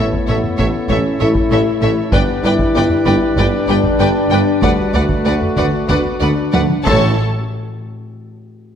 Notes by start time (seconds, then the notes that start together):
Already playing: A1 A3 E4 A4 C#5
0.00 B3
0.13 taiko
0.28 A1 A2 A4 C#5 E5
0.44 taiko low-mid
0.57 A1 A2 A4 C#5 E5, taiko
0.89 A1 A2 C#4 A4 C#5 E5, taiko
1.20 A1 A2 E4 A4 C#5 E5
1.35 taiko
1.51 A1 A2 A4 C#5 E5
1.82 A1 A2 A4 C#5 E5
2.12 G1 G2 B3 D4 G4 B4 D5 G5, taiko
2.43 G1 G2 E4 B4 D5 G5
2.59 taiko
2.75 G1 G2 B4 D5 G5
2.90 taiko low-mid
3.06 G1 G2 B4 D5 G5, taiko
3.36 G1 G2 D4 B4 D5 G5, taiko
3.68 G1 G2 B4 D5 G5
3.84 taiko
4.00 G1 G2 B4 D5 G5
4.30 G1 G2 B4 D5 G5
4.62 D2 G3 F#4 B4 D5 F#5, taiko
4.93 D2 A3 B4 D5 F#5
5.09 taiko
5.25 D2 B4 D5 F#5
5.41 taiko low-mid
5.57 D2 B4 D5 F#5, taiko
5.88 D2 B3 B4 D5 F#5, taiko
6.20 D2 D4 B4 D5 F#5
6.53 D2 B4 D5 F#5, taiko high
6.70 taiko high
6.86 A1 A2 A3 C#4 E4 A4 C#5 E5 A5, taiko